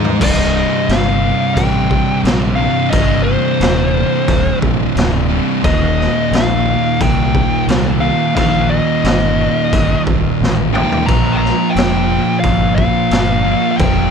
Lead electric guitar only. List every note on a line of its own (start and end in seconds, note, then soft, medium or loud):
0.23 0.92 D#5 medium
0.87 1.55 F5 loud
1.55 2.20 G5 loud
2.56 2.92 F5 loud
2.90 3.23 D#5 loud
3.24 4.57 C5 medium
5.65 6.34 D#5 medium
6.34 7.01 F5 loud
7.02 7.65 G5 loud
8.01 8.34 F5 loud
8.35 8.67 F5 loud
8.70 10.02 D#5 medium
10.74 11.09 G5 medium
11.06 11.35 A#5 loud
11.33 11.41 G5 medium
11.37 11.71 A#5 loud
11.70 12.39 G5 loud
12.40 12.73 F5 medium
12.76 13.70 F5 loud
13.71 13.77 F5 medium
13.77 14.11 G5 loud